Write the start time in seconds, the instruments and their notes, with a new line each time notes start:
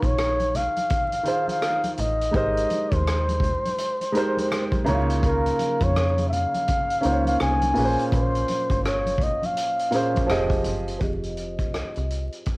Already playing: grand piano D#3 D#4 F4 G#4 C#5 G5 C6
0.03 fm bass A#1, flugelhorn C#5, kick, closed hi-hat
0.17 cross-stick, closed hi-hat, muted conga
0.39 closed hi-hat, high conga
0.55 flugelhorn F5, cross-stick, closed hi-hat, low conga
0.76 closed hi-hat, high conga
0.90 kick, closed hi-hat
1.12 closed hi-hat, muted conga
1.23 grand piano D#3 D#4 F4 G#4, closed hi-hat
1.28 grand piano C5
1.47 flugelhorn F5, closed hi-hat, high conga
1.62 cross-stick, closed hi-hat
1.83 closed hi-hat, high conga
1.95 fm bass A1, flugelhorn F5, closed hi-hat, low conga
2.00 flugelhorn D#5
2.21 closed hi-hat
2.31 fm bass G#1, grand piano G#3 D#4 G4 A#4, kick, closed hi-hat, muted conga
2.35 grand piano C5, flugelhorn D#5
2.57 closed hi-hat
2.70 closed hi-hat, high conga
2.92 fm bass D#2, flugelhorn C5, kick, closed hi-hat
3.07 cross-stick, closed hi-hat
3.29 closed hi-hat, muted conga, high conga
3.40 kick, closed hi-hat, low conga
3.65 closed hi-hat, high conga
3.78 closed hi-hat, muted conga
4.01 closed hi-hat, muted conga
4.12 grand piano G#3 D#4 G4 A#4, closed hi-hat
4.17 grand piano C5
4.37 closed hi-hat, high conga
4.51 cross-stick, closed hi-hat, muted conga
4.72 kick, closed hi-hat, muted conga, high conga
4.85 fm bass C#2, grand piano C#3 A#3 D#4 E4, closed hi-hat, low conga
4.89 grand piano C#5
4.95 grand piano F4
5.10 closed hi-hat
5.23 flugelhorn A#4, kick, closed hi-hat, muted conga
5.46 closed hi-hat, muted conga
5.59 closed hi-hat, high conga
5.81 fm bass F2, flugelhorn C#5, kick, closed hi-hat
5.95 cross-stick, closed hi-hat, muted conga
6.18 closed hi-hat, muted conga, high conga
6.28 flugelhorn E5
6.32 flugelhorn F5, closed hi-hat, low conga
6.54 closed hi-hat, high conga
6.68 kick, closed hi-hat
6.90 closed hi-hat
7.01 grand piano A#3 C#4 D#4 F4, closed hi-hat
7.05 fm bass C#2, grand piano C5
7.12 grand piano C#5
7.25 flugelhorn F5, closed hi-hat, high conga
7.40 fm bass C2, flugelhorn G#5, cross-stick, closed hi-hat
7.62 closed hi-hat, muted conga, high conga
7.74 fm bass A#1, grand piano A#2 A#3 C#4 G#4, open hi-hat, low conga
7.78 grand piano B4
7.85 grand piano C5
7.99 closed hi-hat
8.12 fm bass A#1, flugelhorn C5, kick, closed hi-hat, muted conga, low conga
8.35 closed hi-hat, muted conga
8.48 closed hi-hat, high conga
8.70 fm bass G1, kick, closed hi-hat
8.84 flugelhorn C#5, cross-stick, closed hi-hat, muted conga
9.06 closed hi-hat, muted conga, high conga
9.18 kick, closed hi-hat, low conga
9.23 flugelhorn D#5
9.43 flugelhorn F5, closed hi-hat, high conga
9.57 closed hi-hat
9.79 closed hi-hat
9.90 grand piano A#2 A#3 C#4 G#4, closed hi-hat
9.95 grand piano C5
10.14 kick, closed hi-hat, high conga
10.26 fm bass F1, grand piano F3 C4 G4 G#4, cross-stick, closed hi-hat
10.31 grand piano D#5
10.50 kick, closed hi-hat, high conga
10.64 fm bass F#1, closed hi-hat, low conga
10.88 closed hi-hat
10.99 fm bass F1, grand piano F3 C4 G4 G#4, flugelhorn D#5, kick, closed hi-hat
11.04 grand piano D#5
11.23 closed hi-hat
11.37 closed hi-hat
11.59 kick, closed hi-hat
11.74 fm bass C2, cross-stick, closed hi-hat
11.96 fm bass C2, closed hi-hat
12.10 closed hi-hat
12.32 closed hi-hat
12.45 kick, closed hi-hat